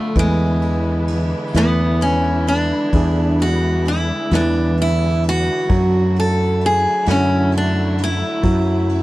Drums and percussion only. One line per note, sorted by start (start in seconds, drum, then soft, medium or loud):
0.15 kick medium
0.15 ride medium
0.62 ride medium
1.08 ride medium
1.54 snare medium
1.54 ride medium
2.01 ride medium
2.47 ride medium
2.93 kick medium
2.93 ride medium
3.39 ride soft
3.85 ride soft
4.31 snare medium
4.31 ride medium
4.77 ride soft
5.24 ride soft
5.69 kick medium
5.69 ride medium
6.16 ride soft
6.61 ride medium
7.06 snare medium
7.06 ride medium
7.52 ride medium
7.98 ride medium
8.43 kick medium
8.43 ride medium
8.89 ride medium